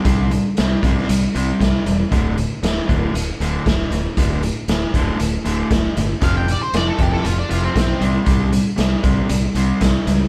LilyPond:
<<
  \new Staff \with { instrumentName = "Lead electric guitar" } { \time 4/4 \key d \minor \tempo 4 = 117 r1 | r1 | r1 | f''16 g''16 d''16 c''16 d''16 a'16 g'16 a'16 f'16 d'16 f'16 c'16 c'8 r8 |
r1 | }
  \new Staff \with { instrumentName = "Overdriven electric guitar" } { \clef bass \time 4/4 \key d \minor <c g c'>8 <c g>8 <c g>8 <c g c'>8 <c g>8 <c g c'>8 <c g>8 <c g>8 | <d, a, d>8 <d, a,>8 <d, a,>8 <d, a, d>8 <d, a,>8 <d, a, d>8 <d, a,>8 <d, a,>8 | <d, a, d>8 <d, a,>8 <d, a,>8 <d, a, d>8 <d, a,>8 <d, a, d>8 <d, a,>8 <d, a,>8 | <f, c f>8 <f, c>8 <f, c>8 <f, c f>8 <f, c>8 <f, c f>8 <f, c>8 <c g c'>8 |
<c g c'>8 <c g>8 <c g>8 <c g c'>8 <c g>8 <c g c'>8 <c g>8 <c g>8 | }
  \new Staff \with { instrumentName = "Fingered electric bass" } { \clef bass \time 4/4 \key d \minor c,4 c,8 c,8 c,8 c,8 c,8 e,,8 | d,,4 d,,8 d,,8 d,,8 d,,8 d,,8 d,,8 | d,,4 d,,8 d,,8 d,,8 d,,8 d,,8 g,,8 | f,,4 f,,8 f,,8 f,,8 f,,8 b,,8 c,8 |
c,4 c,8 c,8 c,8 c,8 c,8 cis,8 | }
  \new DrumStaff \with { instrumentName = "Drums" } \drummode { \time 4/4 <hh bd>8 hh8 <hh sn>8 <hh bd>16 sn16 hh8 hh8 <hh bd sn>8 hh8 | <hh bd>8 hh8 <hh sn>8 <hh bd>8 hh8 hh8 <hh bd sn>8 hh8 | <hh bd>8 hh8 <hh sn>8 <hh bd>8 hh8 hh8 <hh bd sn>8 hh8 | <hh bd>8 hh8 <hh sn>8 <hh bd>16 sn16 hh8 hh8 <hh bd sn>8 hh8 |
<hh bd>8 hh8 <hh sn>8 <hh bd>8 hh8 hh8 <hh bd sn>8 hh8 | }
>>